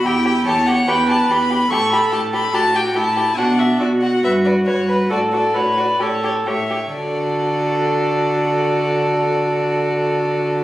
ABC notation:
X:1
M:4/4
L:1/8
Q:1/4=136
K:D
V:1 name="Violin"
g2 a f g a b2 | c' b a b a g a2 | f e d f e d c B | d d c d c c e2 |
d8- | d8 |]
V:2 name="Viola"
E2 c2 B4 | A4 F2 E2 | D2 F6 | A2 B2 A2 c z |
F8- | F8 |]
V:3 name="Violin"
G G G G G G G G | G G G G G G G G | F F F F B B B B | F F F F G G G G |
A8- | A8 |]
V:4 name="Cello" clef=bass
E,,2 E,,2 E,,2 E,,2 | A,,2 A,,2 A,,2 A,,2 | B,,2 B,,2 G,,2 G,,2 | A,,2 A,,2 A,,2 A,,2 |
D,8- | D,8 |]